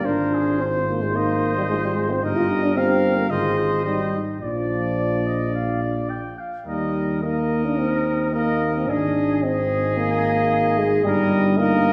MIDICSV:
0, 0, Header, 1, 6, 480
1, 0, Start_track
1, 0, Key_signature, -3, "major"
1, 0, Tempo, 542986
1, 45, Time_signature, 4, 2, 24, 8
1, 3405, Tempo, 560748
1, 7245, Tempo, 541028
1, 10431, End_track
2, 0, Start_track
2, 0, Title_t, "Trumpet"
2, 0, Program_c, 0, 56
2, 46, Note_on_c, 0, 72, 44
2, 1027, Note_on_c, 0, 75, 57
2, 1040, Note_off_c, 0, 72, 0
2, 1824, Note_off_c, 0, 75, 0
2, 1974, Note_on_c, 0, 75, 56
2, 2453, Note_on_c, 0, 77, 55
2, 2466, Note_off_c, 0, 75, 0
2, 2921, Note_on_c, 0, 75, 59
2, 2934, Note_off_c, 0, 77, 0
2, 3395, Note_off_c, 0, 75, 0
2, 3400, Note_on_c, 0, 75, 51
2, 3705, Note_off_c, 0, 75, 0
2, 3884, Note_on_c, 0, 74, 50
2, 5544, Note_off_c, 0, 74, 0
2, 5816, Note_on_c, 0, 75, 42
2, 6262, Note_off_c, 0, 75, 0
2, 6295, Note_on_c, 0, 75, 46
2, 7226, Note_off_c, 0, 75, 0
2, 7246, Note_on_c, 0, 75, 50
2, 7722, Note_off_c, 0, 75, 0
2, 7731, Note_on_c, 0, 75, 46
2, 8203, Note_off_c, 0, 75, 0
2, 8216, Note_on_c, 0, 75, 60
2, 9624, Note_off_c, 0, 75, 0
2, 9653, Note_on_c, 0, 75, 65
2, 10116, Note_off_c, 0, 75, 0
2, 10120, Note_on_c, 0, 75, 66
2, 10431, Note_off_c, 0, 75, 0
2, 10431, End_track
3, 0, Start_track
3, 0, Title_t, "Trumpet"
3, 0, Program_c, 1, 56
3, 51, Note_on_c, 1, 70, 50
3, 298, Note_on_c, 1, 68, 53
3, 312, Note_off_c, 1, 70, 0
3, 528, Note_off_c, 1, 68, 0
3, 533, Note_on_c, 1, 72, 64
3, 1952, Note_off_c, 1, 72, 0
3, 1986, Note_on_c, 1, 70, 58
3, 2443, Note_off_c, 1, 70, 0
3, 2447, Note_on_c, 1, 70, 59
3, 2913, Note_off_c, 1, 70, 0
3, 2926, Note_on_c, 1, 72, 62
3, 3161, Note_off_c, 1, 72, 0
3, 3169, Note_on_c, 1, 72, 59
3, 3630, Note_off_c, 1, 72, 0
3, 3882, Note_on_c, 1, 74, 49
3, 4288, Note_off_c, 1, 74, 0
3, 4366, Note_on_c, 1, 74, 55
3, 4612, Note_on_c, 1, 75, 49
3, 4625, Note_off_c, 1, 74, 0
3, 4845, Note_off_c, 1, 75, 0
3, 4850, Note_on_c, 1, 77, 55
3, 5083, Note_off_c, 1, 77, 0
3, 5089, Note_on_c, 1, 74, 50
3, 5324, Note_on_c, 1, 79, 58
3, 5337, Note_off_c, 1, 74, 0
3, 5570, Note_on_c, 1, 77, 45
3, 5583, Note_off_c, 1, 79, 0
3, 5808, Note_off_c, 1, 77, 0
3, 5813, Note_on_c, 1, 70, 45
3, 6261, Note_off_c, 1, 70, 0
3, 6298, Note_on_c, 1, 70, 51
3, 7228, Note_off_c, 1, 70, 0
3, 7250, Note_on_c, 1, 70, 54
3, 7740, Note_on_c, 1, 68, 53
3, 7753, Note_off_c, 1, 70, 0
3, 8209, Note_off_c, 1, 68, 0
3, 8214, Note_on_c, 1, 68, 71
3, 9624, Note_off_c, 1, 68, 0
3, 9665, Note_on_c, 1, 70, 68
3, 9991, Note_off_c, 1, 70, 0
3, 10128, Note_on_c, 1, 70, 70
3, 10431, Note_off_c, 1, 70, 0
3, 10431, End_track
4, 0, Start_track
4, 0, Title_t, "French horn"
4, 0, Program_c, 2, 60
4, 51, Note_on_c, 2, 65, 47
4, 1024, Note_on_c, 2, 63, 56
4, 1037, Note_off_c, 2, 65, 0
4, 1503, Note_on_c, 2, 65, 62
4, 1516, Note_off_c, 2, 63, 0
4, 1980, Note_off_c, 2, 65, 0
4, 1987, Note_on_c, 2, 67, 50
4, 2443, Note_off_c, 2, 67, 0
4, 2451, Note_on_c, 2, 67, 60
4, 2920, Note_on_c, 2, 65, 59
4, 2933, Note_off_c, 2, 67, 0
4, 3404, Note_off_c, 2, 65, 0
4, 3408, Note_on_c, 2, 63, 57
4, 3514, Note_off_c, 2, 63, 0
4, 3640, Note_on_c, 2, 63, 47
4, 3877, Note_off_c, 2, 63, 0
4, 3880, Note_on_c, 2, 65, 48
4, 5542, Note_off_c, 2, 65, 0
4, 5819, Note_on_c, 2, 63, 42
4, 6264, Note_off_c, 2, 63, 0
4, 6299, Note_on_c, 2, 63, 45
4, 7228, Note_off_c, 2, 63, 0
4, 7258, Note_on_c, 2, 63, 55
4, 7728, Note_off_c, 2, 63, 0
4, 7740, Note_on_c, 2, 63, 50
4, 8206, Note_off_c, 2, 63, 0
4, 8211, Note_on_c, 2, 63, 56
4, 9622, Note_off_c, 2, 63, 0
4, 9653, Note_on_c, 2, 63, 64
4, 10116, Note_off_c, 2, 63, 0
4, 10123, Note_on_c, 2, 63, 69
4, 10431, Note_off_c, 2, 63, 0
4, 10431, End_track
5, 0, Start_track
5, 0, Title_t, "Euphonium"
5, 0, Program_c, 3, 58
5, 39, Note_on_c, 3, 62, 85
5, 526, Note_on_c, 3, 60, 64
5, 539, Note_off_c, 3, 62, 0
5, 772, Note_off_c, 3, 60, 0
5, 777, Note_on_c, 3, 58, 68
5, 903, Note_on_c, 3, 56, 68
5, 916, Note_off_c, 3, 58, 0
5, 1021, Note_on_c, 3, 58, 78
5, 1034, Note_off_c, 3, 56, 0
5, 1383, Note_off_c, 3, 58, 0
5, 1390, Note_on_c, 3, 55, 69
5, 1442, Note_off_c, 3, 55, 0
5, 1494, Note_on_c, 3, 56, 80
5, 1550, Note_off_c, 3, 56, 0
5, 1624, Note_on_c, 3, 55, 71
5, 1728, Note_on_c, 3, 56, 78
5, 1741, Note_off_c, 3, 55, 0
5, 1856, Note_on_c, 3, 60, 76
5, 1869, Note_off_c, 3, 56, 0
5, 1966, Note_off_c, 3, 60, 0
5, 1971, Note_on_c, 3, 63, 85
5, 2090, Note_on_c, 3, 65, 81
5, 2104, Note_off_c, 3, 63, 0
5, 2198, Note_off_c, 3, 65, 0
5, 2203, Note_on_c, 3, 63, 83
5, 2326, Note_on_c, 3, 62, 78
5, 2339, Note_off_c, 3, 63, 0
5, 2425, Note_off_c, 3, 62, 0
5, 2430, Note_on_c, 3, 60, 90
5, 2787, Note_off_c, 3, 60, 0
5, 2797, Note_on_c, 3, 58, 66
5, 2852, Note_off_c, 3, 58, 0
5, 2915, Note_on_c, 3, 56, 83
5, 3391, Note_off_c, 3, 56, 0
5, 3406, Note_on_c, 3, 55, 66
5, 3707, Note_off_c, 3, 55, 0
5, 3873, Note_on_c, 3, 53, 67
5, 5297, Note_off_c, 3, 53, 0
5, 5813, Note_on_c, 3, 55, 69
5, 6295, Note_on_c, 3, 58, 67
5, 6308, Note_off_c, 3, 55, 0
5, 6655, Note_on_c, 3, 62, 64
5, 6668, Note_off_c, 3, 58, 0
5, 6772, Note_on_c, 3, 60, 75
5, 6785, Note_off_c, 3, 62, 0
5, 7240, Note_off_c, 3, 60, 0
5, 7245, Note_on_c, 3, 58, 69
5, 7603, Note_off_c, 3, 58, 0
5, 7619, Note_on_c, 3, 60, 70
5, 7728, Note_on_c, 3, 62, 83
5, 7741, Note_off_c, 3, 60, 0
5, 8215, Note_on_c, 3, 60, 73
5, 8228, Note_off_c, 3, 62, 0
5, 8690, Note_off_c, 3, 60, 0
5, 8695, Note_on_c, 3, 58, 89
5, 9416, Note_on_c, 3, 56, 93
5, 9430, Note_off_c, 3, 58, 0
5, 9650, Note_on_c, 3, 55, 99
5, 9663, Note_off_c, 3, 56, 0
5, 10120, Note_on_c, 3, 58, 99
5, 10133, Note_off_c, 3, 55, 0
5, 10431, Note_off_c, 3, 58, 0
5, 10431, End_track
6, 0, Start_track
6, 0, Title_t, "Tuba"
6, 0, Program_c, 4, 58
6, 41, Note_on_c, 4, 32, 55
6, 1943, Note_off_c, 4, 32, 0
6, 1973, Note_on_c, 4, 31, 63
6, 2914, Note_on_c, 4, 32, 58
6, 2928, Note_off_c, 4, 31, 0
6, 3633, Note_off_c, 4, 32, 0
6, 3875, Note_on_c, 4, 34, 51
6, 5539, Note_off_c, 4, 34, 0
6, 5814, Note_on_c, 4, 39, 46
6, 7724, Note_on_c, 4, 32, 56
6, 7737, Note_off_c, 4, 39, 0
6, 9643, Note_off_c, 4, 32, 0
6, 9648, Note_on_c, 4, 31, 73
6, 10431, Note_off_c, 4, 31, 0
6, 10431, End_track
0, 0, End_of_file